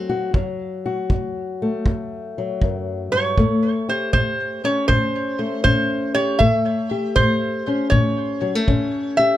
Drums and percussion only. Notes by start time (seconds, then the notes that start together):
0.34 kick
1.10 kick
1.86 kick
2.62 kick
3.38 kick
4.13 kick
4.89 kick
5.65 kick
6.40 kick
7.16 kick
7.92 kick
8.68 kick